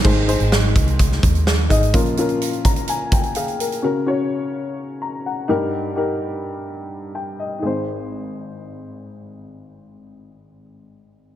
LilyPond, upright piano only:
<<
  \new Staff \with { instrumentName = "Upright piano" } { \time 4/4 \key aes \major \tempo 4 = 127 << { r1 | r4. bes''8 aes''8 g''8 <aes' f''>8 bes'8~ | bes'8 r2 bes''8 ges''4 | r2. g''8 ees''8~ |
ees''8 r2. r8 | r1 | } \\ { <ees' aes' c''>8 <ees' aes' c''>4. r4. <ees' aes' ees''>8 | <des' f' bes'>8 <des' f' bes'>4. r2 | <des' ges' bes'>8 <des' ges' des''>4. r4. <ees' g' bes'>8~ | <ees' g' bes'>8 <ees' g' bes'>4. r2 |
<ees' aes' c''>1~ | <ees' aes' c''>1 | } >> }
  \new Staff \with { instrumentName = "Upright piano" } { \clef bass \time 4/4 \key aes \major <aes, ees>4. r2 r8 | <bes, f>4. r2 r8 | des4. r2 <g, g>8~ | <g, g>4 r2. |
aes,,1~ | aes,,1 | }
>>